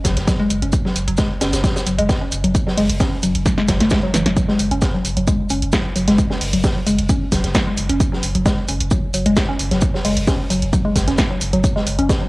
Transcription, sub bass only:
0, 0, Header, 1, 2, 480
1, 0, Start_track
1, 0, Tempo, 454545
1, 771, Time_signature, 4, 2, 24, 8
1, 12975, End_track
2, 0, Start_track
2, 0, Title_t, "Sub bass"
2, 0, Program_c, 0, 38
2, 51, Note_on_c, 0, 30, 96
2, 170, Note_off_c, 0, 30, 0
2, 177, Note_on_c, 0, 30, 81
2, 288, Note_off_c, 0, 30, 0
2, 530, Note_on_c, 0, 30, 102
2, 650, Note_off_c, 0, 30, 0
2, 657, Note_on_c, 0, 30, 81
2, 768, Note_off_c, 0, 30, 0
2, 1010, Note_on_c, 0, 30, 99
2, 1131, Note_off_c, 0, 30, 0
2, 1137, Note_on_c, 0, 30, 81
2, 1248, Note_off_c, 0, 30, 0
2, 1491, Note_on_c, 0, 30, 95
2, 1611, Note_off_c, 0, 30, 0
2, 1617, Note_on_c, 0, 30, 85
2, 1728, Note_off_c, 0, 30, 0
2, 1970, Note_on_c, 0, 30, 97
2, 2091, Note_off_c, 0, 30, 0
2, 2097, Note_on_c, 0, 30, 80
2, 2208, Note_off_c, 0, 30, 0
2, 2450, Note_on_c, 0, 30, 99
2, 2570, Note_off_c, 0, 30, 0
2, 2576, Note_on_c, 0, 30, 81
2, 2688, Note_off_c, 0, 30, 0
2, 2930, Note_on_c, 0, 30, 98
2, 3051, Note_off_c, 0, 30, 0
2, 3057, Note_on_c, 0, 30, 81
2, 3168, Note_off_c, 0, 30, 0
2, 3410, Note_on_c, 0, 30, 92
2, 3531, Note_off_c, 0, 30, 0
2, 3537, Note_on_c, 0, 30, 81
2, 3648, Note_off_c, 0, 30, 0
2, 3890, Note_on_c, 0, 30, 98
2, 4011, Note_off_c, 0, 30, 0
2, 4017, Note_on_c, 0, 30, 79
2, 4128, Note_off_c, 0, 30, 0
2, 4370, Note_on_c, 0, 30, 100
2, 4491, Note_off_c, 0, 30, 0
2, 4497, Note_on_c, 0, 30, 81
2, 4608, Note_off_c, 0, 30, 0
2, 4850, Note_on_c, 0, 30, 99
2, 4970, Note_off_c, 0, 30, 0
2, 4977, Note_on_c, 0, 30, 80
2, 5088, Note_off_c, 0, 30, 0
2, 5330, Note_on_c, 0, 30, 91
2, 5451, Note_off_c, 0, 30, 0
2, 5457, Note_on_c, 0, 30, 85
2, 5568, Note_off_c, 0, 30, 0
2, 5810, Note_on_c, 0, 30, 99
2, 5931, Note_off_c, 0, 30, 0
2, 5937, Note_on_c, 0, 30, 80
2, 6048, Note_off_c, 0, 30, 0
2, 6291, Note_on_c, 0, 30, 99
2, 6411, Note_off_c, 0, 30, 0
2, 6417, Note_on_c, 0, 30, 81
2, 6528, Note_off_c, 0, 30, 0
2, 6770, Note_on_c, 0, 30, 102
2, 6891, Note_off_c, 0, 30, 0
2, 6898, Note_on_c, 0, 30, 80
2, 7009, Note_off_c, 0, 30, 0
2, 7250, Note_on_c, 0, 30, 91
2, 7371, Note_off_c, 0, 30, 0
2, 7377, Note_on_c, 0, 30, 83
2, 7488, Note_off_c, 0, 30, 0
2, 7730, Note_on_c, 0, 30, 100
2, 7850, Note_off_c, 0, 30, 0
2, 7856, Note_on_c, 0, 30, 81
2, 7968, Note_off_c, 0, 30, 0
2, 8210, Note_on_c, 0, 30, 99
2, 8331, Note_off_c, 0, 30, 0
2, 8337, Note_on_c, 0, 30, 81
2, 8448, Note_off_c, 0, 30, 0
2, 8690, Note_on_c, 0, 30, 98
2, 8811, Note_off_c, 0, 30, 0
2, 8817, Note_on_c, 0, 30, 82
2, 8928, Note_off_c, 0, 30, 0
2, 9171, Note_on_c, 0, 30, 97
2, 9291, Note_off_c, 0, 30, 0
2, 9297, Note_on_c, 0, 30, 82
2, 9409, Note_off_c, 0, 30, 0
2, 9651, Note_on_c, 0, 30, 101
2, 9771, Note_off_c, 0, 30, 0
2, 9777, Note_on_c, 0, 30, 82
2, 9888, Note_off_c, 0, 30, 0
2, 10131, Note_on_c, 0, 30, 103
2, 10251, Note_off_c, 0, 30, 0
2, 10257, Note_on_c, 0, 30, 82
2, 10368, Note_off_c, 0, 30, 0
2, 10611, Note_on_c, 0, 30, 99
2, 10731, Note_off_c, 0, 30, 0
2, 10737, Note_on_c, 0, 30, 81
2, 10848, Note_off_c, 0, 30, 0
2, 11091, Note_on_c, 0, 30, 97
2, 11211, Note_off_c, 0, 30, 0
2, 11217, Note_on_c, 0, 30, 85
2, 11329, Note_off_c, 0, 30, 0
2, 11570, Note_on_c, 0, 30, 99
2, 11691, Note_off_c, 0, 30, 0
2, 11698, Note_on_c, 0, 30, 82
2, 11809, Note_off_c, 0, 30, 0
2, 12051, Note_on_c, 0, 30, 98
2, 12171, Note_off_c, 0, 30, 0
2, 12177, Note_on_c, 0, 30, 81
2, 12289, Note_off_c, 0, 30, 0
2, 12531, Note_on_c, 0, 30, 101
2, 12651, Note_off_c, 0, 30, 0
2, 12657, Note_on_c, 0, 30, 81
2, 12769, Note_off_c, 0, 30, 0
2, 12975, End_track
0, 0, End_of_file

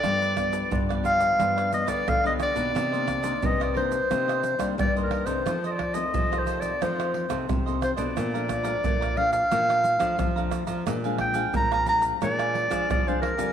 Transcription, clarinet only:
0, 0, Header, 1, 2, 480
1, 0, Start_track
1, 0, Tempo, 676437
1, 30, Time_signature, 4, 2, 24, 8
1, 9599, End_track
2, 0, Start_track
2, 0, Title_t, "Clarinet"
2, 0, Program_c, 0, 71
2, 0, Note_on_c, 0, 74, 109
2, 558, Note_off_c, 0, 74, 0
2, 749, Note_on_c, 0, 77, 103
2, 1203, Note_off_c, 0, 77, 0
2, 1236, Note_on_c, 0, 75, 87
2, 1342, Note_on_c, 0, 74, 93
2, 1353, Note_off_c, 0, 75, 0
2, 1483, Note_on_c, 0, 77, 98
2, 1494, Note_off_c, 0, 74, 0
2, 1598, Note_off_c, 0, 77, 0
2, 1607, Note_on_c, 0, 75, 76
2, 1658, Note_off_c, 0, 75, 0
2, 1718, Note_on_c, 0, 74, 99
2, 2454, Note_on_c, 0, 75, 92
2, 2464, Note_off_c, 0, 74, 0
2, 2564, Note_off_c, 0, 75, 0
2, 2573, Note_on_c, 0, 74, 79
2, 2673, Note_off_c, 0, 74, 0
2, 2677, Note_on_c, 0, 72, 96
2, 3369, Note_off_c, 0, 72, 0
2, 3408, Note_on_c, 0, 74, 96
2, 3514, Note_off_c, 0, 74, 0
2, 3569, Note_on_c, 0, 70, 75
2, 3732, Note_on_c, 0, 72, 83
2, 3742, Note_off_c, 0, 70, 0
2, 4005, Note_off_c, 0, 72, 0
2, 4018, Note_on_c, 0, 75, 58
2, 4056, Note_on_c, 0, 74, 78
2, 4067, Note_off_c, 0, 75, 0
2, 4214, Note_on_c, 0, 75, 89
2, 4225, Note_off_c, 0, 74, 0
2, 4532, Note_on_c, 0, 72, 78
2, 4542, Note_off_c, 0, 75, 0
2, 4686, Note_on_c, 0, 74, 82
2, 4697, Note_off_c, 0, 72, 0
2, 4842, Note_on_c, 0, 72, 73
2, 4853, Note_off_c, 0, 74, 0
2, 5320, Note_off_c, 0, 72, 0
2, 5559, Note_on_c, 0, 72, 77
2, 5613, Note_off_c, 0, 72, 0
2, 5663, Note_on_c, 0, 74, 86
2, 6511, Note_on_c, 0, 77, 101
2, 6522, Note_off_c, 0, 74, 0
2, 6616, Note_off_c, 0, 77, 0
2, 6620, Note_on_c, 0, 77, 102
2, 7440, Note_off_c, 0, 77, 0
2, 7955, Note_on_c, 0, 79, 93
2, 8179, Note_off_c, 0, 79, 0
2, 8206, Note_on_c, 0, 82, 100
2, 8313, Note_off_c, 0, 82, 0
2, 8328, Note_on_c, 0, 82, 98
2, 8432, Note_off_c, 0, 82, 0
2, 8437, Note_on_c, 0, 82, 100
2, 8544, Note_off_c, 0, 82, 0
2, 8686, Note_on_c, 0, 74, 100
2, 9131, Note_off_c, 0, 74, 0
2, 9162, Note_on_c, 0, 74, 91
2, 9283, Note_on_c, 0, 72, 81
2, 9293, Note_off_c, 0, 74, 0
2, 9373, Note_off_c, 0, 72, 0
2, 9377, Note_on_c, 0, 70, 102
2, 9599, Note_off_c, 0, 70, 0
2, 9599, End_track
0, 0, End_of_file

